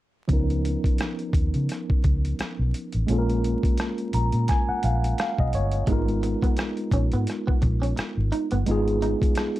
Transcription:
0.28 C#2 F3 B3 C#4 D#4, kick, closed hi-hat
0.33 A#4
0.50 closed hi-hat
0.65 closed hi-hat
0.84 kick, closed hi-hat
0.98 cross-stick, closed hi-hat
1.19 closed hi-hat
1.33 D#2, kick, closed hi-hat
1.54 C#3, closed hi-hat
1.69 cross-stick, closed hi-hat
1.90 muted fingered electric bass stroke, kick
2.04 C#2, kick, closed hi-hat
2.25 closed hi-hat
2.39 muted fingered electric bass stroke, cross-stick, closed hi-hat
2.59 B1
2.74 closed hi-hat
2.92 A1, closed hi-hat
3.07 A#1 G#3 A#3 C#4 F4, closed hi-hat
3.12 A4
3.18 A#4
3.30 closed hi-hat
3.44 closed hi-hat
3.63 kick, closed hi-hat
3.77 cross-stick, closed hi-hat
3.98 closed hi-hat
4.13 A#1 A#5, closed hi-hat
4.32 A#2, closed hi-hat
4.48 G#5, kick, cross-stick, closed hi-hat
4.69 F#5, muted fingered electric bass stroke
4.83 A#1 F5, closed hi-hat
5.04 closed hi-hat
5.18 F5, cross-stick, closed hi-hat
5.38 B1 D#5, kick
5.53 G1 C#5, closed hi-hat
5.71 closed hi-hat
5.87 G#1 G#3 B3 D#4, kick, closed hi-hat
5.91 F4 A#4
6.08 closed hi-hat
6.23 muted clean electric guitar stroke, closed hi-hat
6.42 B3, kick, closed hi-hat
6.57 muted clean electric guitar stroke, cross-stick, closed hi-hat
6.77 closed hi-hat
6.91 A#1 C#4, kick, closed hi-hat
7.12 G#2 B3, closed hi-hat
7.27 cross-stick, closed hi-hat
7.47 B3, muted fingered electric bass stroke, kick
7.62 A#1, muted clean electric guitar stroke, kick, closed hi-hat
7.82 C#4, closed hi-hat
7.97 muted clean electric guitar stroke, muted fingered electric bass stroke, cross-stick, closed hi-hat
8.17 G#1
8.32 D#4, closed hi-hat
8.51 G1 B3, closed hi-hat
8.66 G#1 G#3 B3 D#4 F4, closed hi-hat
8.71 G#4
8.88 closed hi-hat
9.02 D#4, closed hi-hat
9.22 kick, closed hi-hat
9.35 cross-stick, closed hi-hat
9.56 closed hi-hat

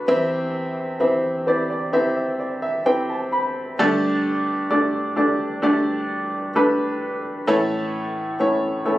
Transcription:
Already playing: A4 B4
0.08 E2 E3 C4 E4 G4 C5 E5
1.00 C4 E4 G4 C5 E5
1.47 C4 E4 G4 C5 D5
1.70 D5
1.93 C4 E4 G4 C5 E5
2.17 E5
2.40 D5
2.62 E5
2.86 C4 E4 G4 C5 G5
3.10 A5
3.32 B5
3.79 G2 D3 A3 D4 G4 A4 D5
4.70 A3 D4 G4 A4 D5
5.16 A3 D4 G4 A4 D5
5.62 A3 D4 G4 A4 D5
6.55 A3 D4 G4 A4 B4
7.47 A2 E3 A3 C#4 E4 A4 C#5
8.40 A3 C#4 E4 A4 C#5
8.85 A3 C#4 E4 A4 C#5

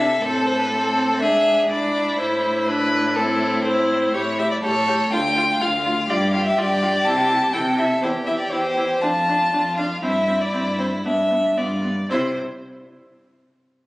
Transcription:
Already playing: C3 A4 E5
0.22 A2 C4 A4
0.47 C5
0.60 B4
0.72 C4 A4
1.21 G#2 D4 G#4 E5
1.70 D4 E4 D5
2.19 A2 E4 C5
2.67 D4 B4
3.16 C4 E4 A4
3.65 E4 C5
4.14 A2 E4 G4 C#5
4.39 G4 E5
4.51 D5
4.63 A2 G4 A4 C#5
4.88 G4
5.12 D2 F4 G5
5.37 F4
5.61 D2 F4 F5
5.86 F4
6.09 G2 F4 G4 D5
6.34 F4 F5
6.46 E5
6.57 G2 F4 D5
6.82 F4
7.06 C3 E4 A5
7.30 E4
7.54 C3 E4 A4 G5
7.78 E4 E5
8.02 E2 E4 G4 C5
8.27 E4 E5
8.39 D5
8.52 E2 E4 C5
8.77 E4
9.02 F2 D4 F4 A5
9.28 D4
9.53 F2 D4
9.78 D4 F5
10.02 G2 C4 E4 E5
10.28 C4
10.41 D5
10.53 G2 C4
10.79 C4 C5
11.05 G2 B3 D4 E5
11.30 B3
11.57 G2 B3 F4 D5
11.84 B3
12.10 C3 E4 C5

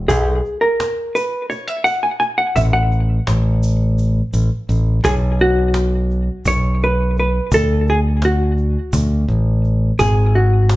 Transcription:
0.08 B1 G#4, cajon bass, shaker
0.45 cajon slap
0.61 A#4
0.80 cajon slap
1.15 B4, cajon slap, shaker
1.50 C#5, cajon slap, shaker
1.68 E5
1.84 F#5, cajon slap, shaker
2.03 G#5
2.20 G#5, cajon slap
2.38 F#5
2.56 A1 E5, cajon bass, shaker
2.73 F#5
2.92 cajon slap
3.27 A1, cajon slap
3.63 cajon slap, shaker
3.98 cajon slap, shaker
4.33 A1, cajon slap, shaker
4.68 A1, cajon slap, shaker
5.04 B1 G#4, cajon bass, shaker
5.39 F#4, cajon slap
5.74 cajon slap
6.10 cajon slap
6.45 B1 C#5, cajon bass, cajon slap, shaker
6.82 B4, cajon slap
7.17 B4, cajon slap
7.52 D2 A4, cajon bass, shaker
7.87 G#4, cajon slap
8.22 F#4, cajon slap
8.57 cajon slap
8.93 D2, cajon bass, shaker
9.28 A1, cajon slap
9.64 cajon slap
9.99 G#1 G#4, cajon bass, shaker
10.35 F#4, cajon slap
10.69 cajon slap

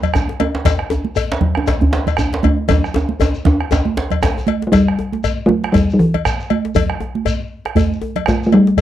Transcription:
0.03 bombo low, cowbell, high conga, low conga, shekere
0.14 bombo rim, djembe slap, djembe tone, djembe bass, shekere
0.29 djembe slap
0.40 cowbell, high conga, djembe tone
0.55 djembe slap
0.65 bombo low, cowbell, djembe slap, high conga, low conga, djembe bass, shekere
0.79 bombo rim
0.90 djembe slap, djembe tone, shekere
1.05 high conga
1.15 bombo rim, cowbell, high conga, djembe bass, shekere
1.32 djembe slap
1.41 bombo low, high conga, low conga
1.55 bombo rim, djembe tone
1.66 bombo rim, cowbell, djembe slap, djembe bass, shekere
1.80 bombo rim, high conga, djembe bass
1.91 bombo rim, djembe slap, djembe tone, shekere
2.06 bombo low, cowbell, high conga, low conga, shekere
2.17 bombo rim, djembe slap, djembe tone, djembe bass, shekere
2.33 djembe slap
2.43 cowbell, high conga, djembe bass
2.58 djembe slap
2.69 bombo low, cowbell, djembe tone, low conga, djembe bass, shekere
2.84 bombo rim, shekere
2.94 bombo rim, djembe slap, djembe tone
2.96 djembe tone, shekere
3.09 high conga
3.20 cowbell, high conga, djembe tone, djembe bass, shekere
3.34 djembe slap, shekere
3.45 bombo low, high conga, djembe tone, low conga, shekere
3.60 bombo rim
3.71 bombo rim, cowbell, djembe slap, high conga, djembe tone, djembe bass, shekere
3.85 djembe slap, high conga
3.96 djembe slap, high conga, djembe tone
4.10 bombo low, cowbell, low conga
4.22 bombo rim, djembe slap, high conga, djembe bass, shekere
4.36 high conga, djembe bass, shekere
4.47 cowbell, djembe slap, high conga
4.62 djembe slap, high conga
4.67 A3
4.72 G3, bombo low, cowbell, low conga, djembe bass, shekere
4.88 bombo rim
4.98 djembe slap, high conga, djembe tone
5.12 djembe slap, high conga
5.24 cowbell, djembe slap, djembe bass, shekere
5.37 high conga
5.46 A3, bombo rim, low conga
5.64 bombo rim, djembe slap
5.72 G3, bombo low, cowbell, high conga, djembe bass, shekere
5.90 G3, shekere
5.99 E3, djembe tone
6.14 cowbell, djembe slap, low conga
6.25 bombo rim, djembe slap, djembe bass, shekere
6.40 shekere
6.50 cowbell, high conga
6.65 djembe slap
6.75 bombo low, cowbell, djembe bass, low conga, shekere
6.90 bombo rim
7.00 djembe slap, djembe tone, high conga
7.15 high conga
7.25 cowbell, djembe slap, djembe bass, shekere
7.40 high conga
7.65 bombo rim, djembe slap
7.75 bombo low, cowbell, high conga, djembe bass, shekere
7.93 shekere
8.02 djembe tone
8.16 cowbell, djembe slap, low conga
8.26 A3, bombo rim, djembe slap, djembe bass, shekere
8.43 A3, shekere
8.52 G3, cowbell, high conga
8.67 djembe slap
8.77 bombo low, cowbell, low conga

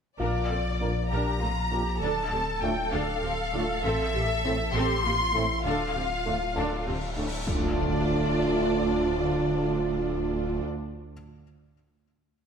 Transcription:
0.19 A#1 D4 F4 A#4 D5 F5
0.50 A#1 C4 A4
0.80 A#1 F2 A#3 D4 F4 A#4
1.11 A#1 D4 G4 A#4 A#5
1.41 A#1 A3 C4 F4
1.71 A#1 F2 A#3 D4 F4 G4 A#4
2.01 D1 D2 D4 A4 A5
2.32 D2 C4 G4
2.62 D2 A2 A3 D4 F4 A4 G5
2.92 D2 D4 A4 F5
3.22 D2 C4 G4
3.53 D2 A2 A3 D4 F4 A4
3.83 A1 C4 A4 E5
4.14 A1 A#3 G4
4.44 A1 A2 A3 C4 A4
4.74 A1 C4 G4 A4 C6
5.04 A1 A#3 F4 G4
5.33 A1 A2 A3 C4 E4 A4
5.64 D1 D2 D4 F4 A4 F5, cymbal swell
5.95 D2 C4 G4
6.25 D2 A2 A3 D4 A4
6.56 D2 D4 A4 A5
6.87 D2 C4 G4
7.16 D2 A2 A3 D4 A4
7.47 D1 D2 A2 A3 D4 F4 D5, impact

